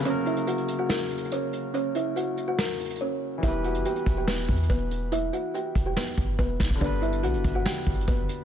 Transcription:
0.00 C#3 F#3
0.05 A#3 C#4 F#4 C#5, closed hi-hat
0.10 A#4
0.26 E4 E5, closed hi-hat
0.37 closed hi-hat
0.47 F#4 F#5, closed hi-hat
0.58 closed hi-hat
0.68 closed hi-hat
0.79 F#4 F#5
0.89 A#4 A#5, snare
1.11 closed hi-hat
1.18 closed hi-hat
1.25 closed hi-hat
1.31 C#4 C#5, closed hi-hat
1.53 closed hi-hat
1.74 C#4 C#5, closed hi-hat
1.95 E4 E5, closed hi-hat
2.16 F#4 F#5, closed hi-hat
2.37 closed hi-hat
2.48 F#4 F#5
2.58 A#4 A#5, snare
2.80 closed hi-hat
2.85 closed hi-hat
2.90 closed hi-hat
2.95 closed hi-hat
3.01 C#4 C#5
3.38 E3 G3
3.43 E1 B3 E4 G4 E5, kick, closed hi-hat
3.48 B4
3.64 F#4 F#5, closed hi-hat
3.75 F#1, closed hi-hat
3.85 G4 G5, closed hi-hat
3.96 closed hi-hat
4.06 E1, kick, closed hi-hat
4.17 G4 G5
4.28 B3 B4, snare
4.49 E2, kick, closed hi-hat
4.56 closed hi-hat
4.63 closed hi-hat
4.70 E1 B3 B4, kick, closed hi-hat
4.91 closed hi-hat
5.12 E4 E5, closed hi-hat
5.33 F#4 F#5, closed hi-hat
5.54 G4 G5, closed hi-hat
5.75 E1, kick, closed hi-hat
5.86 G4 G5
5.96 B3 B4, snare
6.18 G1, kick, closed hi-hat
6.39 E1 B3 B4, kick, closed hi-hat
6.60 E1, kick, snare, open hi-hat
6.67 kick, closed hi-hat
6.74 D3, closed hi-hat
6.78 G1 G3 B3 D4 D5, kick, closed hi-hat
6.83 D4 B4
7.02 E4 E5, closed hi-hat
7.13 closed hi-hat
7.23 B1 F#4 F#5, closed hi-hat
7.34 G1, closed hi-hat
7.44 G1, kick, closed hi-hat
7.55 F#4 F#5
7.65 G4 G5, snare
7.87 G1, kick, closed hi-hat
7.94 closed hi-hat
8.01 closed hi-hat
8.08 F#1 B3 B4, kick, closed hi-hat
8.29 closed hi-hat

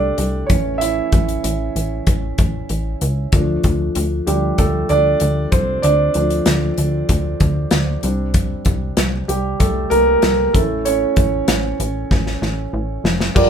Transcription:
Already playing: C2 G3 A3 D4 G4 A4 D5
0.18 C2, closed hi-hat
0.47 A1 E3 A3 C#4 C#5, kick, closed hi-hat
0.78 E4 E5, closed hi-hat
1.12 A1, kick, closed hi-hat
1.29 closed hi-hat
1.44 A1, closed hi-hat
1.76 A1, closed hi-hat
2.07 A1, kick, closed hi-hat
2.38 A1, kick, closed hi-hat
2.69 A1, closed hi-hat
3.01 C#2, closed hi-hat
3.32 D2 F3 A3 D4, kick, closed hi-hat
3.64 D2, kick, closed hi-hat
3.95 D2, closed hi-hat
4.27 D2 F3 G3 A3 D4 G4, closed hi-hat
4.58 D2 A3 A4, kick, closed hi-hat
4.89 D2 D4 D5, closed hi-hat
5.20 D2, closed hi-hat
5.52 C2 C4 C5, kick, closed hi-hat
5.82 D2 D4 D5, closed hi-hat
6.14 D2 F3 A3 D4, closed hi-hat
6.30 closed hi-hat
6.46 D2, snare, closed hi-hat
6.78 D2, closed hi-hat
7.09 D2, kick, closed hi-hat
7.40 D2, kick, closed hi-hat
7.71 D2, snare, closed hi-hat
8.03 C2 G3 C4 D4, closed hi-hat
8.34 kick, closed hi-hat
8.65 C2, kick, closed hi-hat
8.97 C2, snare, closed hi-hat
9.28 C2 G3 G4, closed hi-hat
9.59 C2 A3 A4, kick, closed hi-hat
9.90 C2 A#3 A#4, closed hi-hat
10.22 C2, snare, closed hi-hat
10.53 A1 A3 C#4 E4 A4, kick, closed hi-hat
10.85 C#4 C#5, closed hi-hat
11.16 A1, kick, closed hi-hat
11.48 A1, snare, closed hi-hat
11.79 A1, closed hi-hat
12.11 A1, kick, snare
12.27 snare
12.42 A1, snare
12.73 A1
13.04 F1, snare
13.20 snare
13.35 G1 G2 D3 F4 G4 A#4 D5, kick, crash

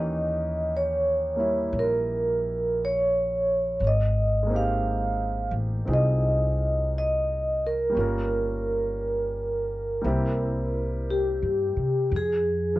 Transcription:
Already playing: D#2 E3 A#3 C#4 D#4 G4 D#5
0.77 C#5
1.36 G3 A#3 E4
1.73 A#1
1.79 A#4
2.85 C#5
3.80 G#1
3.87 D#5
4.43 G#3 A#3
4.49 C4 D#4
4.54 G4 F5
5.51 A1
5.85 C2 C4 D#4 F4 G#4
5.93 D#5
6.98 D#5
7.67 A#4
7.90 G3 A#3
7.95 G1 C#4 F4
8.01 A#4
10.01 C2 G3 A#3 C4 E4
10.06 G4
11.11 G4
11.43 G2
11.76 C3
12.11 F2
12.16 G#4
12.76 F3

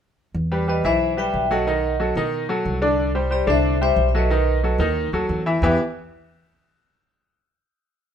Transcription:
0.34 E2
0.52 G3 G4 B4
0.68 G3 G4 B4 D#5
0.84 B1 E3 E4 C5 E5
1.17 G3 G4 B4 E5 G5
1.34 B1
1.51 F#3 F#4 A4 D#5 F#5
1.67 D#3 D#4 D#5
2.00 F#3 F#4 A4
2.15 B2 D#3 D#4 D#5
2.49 F#3 F#4 A4
2.65 C2
2.82 D3 D4 D5
3.15 G3 G4 C5
3.31 G3 G4 C5 D5
3.47 C2 D3 D4 C5 D5 E5
3.81 G3 G4 C5 E5
3.96 B1
4.09 E5
4.15 F#3 F#4 A4 B4 D#5
4.30 D#3 D#4 D#5
4.63 F#3 F#4 A4
4.78 D#2 D#3 D#4 D#5
5.12 D#2 F#3 F#4 A4
5.29 E2
5.46 E3 E4 E5
5.62 E2 E3 B3 E4 G4 B4 E5

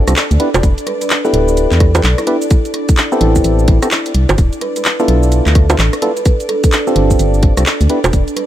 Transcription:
Already playing: D4 D5
0.08 C2 C4 D4 F4 G4 A4, cross-stick, closed hi-hat, shaker
0.16 clap, shaker
0.31 D2, closed hi-hat, shaker
0.40 B3 D4 E4 G4 B4, closed hi-hat
0.54 E1, closed hi-hat, high bongo, shaker
0.63 E1, kick, closed hi-hat, shaker
0.78 closed hi-hat, shaker
0.86 B4, cross-stick, closed hi-hat
1.01 B4, closed hi-hat, shaker
1.10 clap, shaker
1.24 B3 D4 E4 G4 A4 B4, shaker
1.33 D1 A4, closed hi-hat
1.48 shaker
1.57 closed hi-hat, shaker
1.72 E2, clap, shaker
1.80 G4, kick, cross-stick, closed hi-hat
1.95 B3 D4 E4 G4 B4, closed hi-hat, high bongo, shaker
2.04 B1, clap, shaker
2.18 E4, cross-stick, closed hi-hat, shaker
2.27 B3 D4 E4 G4 B4, closed hi-hat
2.42 closed hi-hat, shaker
2.50 kick, closed hi-hat, shaker
2.65 closed hi-hat, shaker
2.74 cross-stick, closed hi-hat
2.89 kick, closed hi-hat, shaker
2.97 clap, shaker
3.12 B3 C4 E4 G4 A4, shaker
3.21 A1 E4, closed hi-hat
3.35 kick, shaker
3.44 A1, closed hi-hat, shaker
3.59 shaker
3.68 A1 E4, kick, closed hi-hat
3.82 B3 C4 E4 G4 A4, cross-stick, closed hi-hat, shaker
3.91 clap, shaker
4.06 closed hi-hat, shaker
4.14 C2, closed hi-hat
4.29 G1, closed hi-hat, high bongo, shaker
4.38 D1 D4 D5, kick, closed hi-hat, shaker
4.53 closed hi-hat, shaker
4.61 B4, cross-stick, closed hi-hat
4.76 B4, closed hi-hat, shaker
4.85 clap, shaker
4.99 B3 D4 E4 F4 A4, shaker
5.08 B1 A4, closed hi-hat
5.23 shaker
5.32 closed hi-hat, shaker
5.46 D2, clap, shaker
5.55 kick, cross-stick, closed hi-hat
5.70 B3 D4 E4 F4 A4, closed hi-hat, high bongo, shaker
5.79 A1, clap, shaker
5.93 cross-stick, closed hi-hat, shaker
6.02 B3 D4 E4 F4 A4 B4, closed hi-hat
6.17 B4, closed hi-hat, shaker
6.25 kick, closed hi-hat, shaker
6.40 closed hi-hat, shaker
6.49 A4, cross-stick, closed hi-hat
6.64 kick, closed hi-hat, shaker
6.72 clap, shaker
6.87 C4 D4 F4 G4 A4, shaker
6.96 G1, closed hi-hat
7.10 kick, shaker
7.19 G1, closed hi-hat, shaker
7.34 shaker
7.43 kick, closed hi-hat
7.57 C2 C4 D4 F4 G4 A4, cross-stick, closed hi-hat, shaker
7.66 clap, shaker
7.81 D2, closed hi-hat, shaker
7.90 B3 D4 E4 G4 B4, closed hi-hat
8.04 E1, closed hi-hat, high bongo, shaker
8.13 E1, kick, closed hi-hat, shaker
8.28 closed hi-hat, shaker
8.36 B4, cross-stick, closed hi-hat

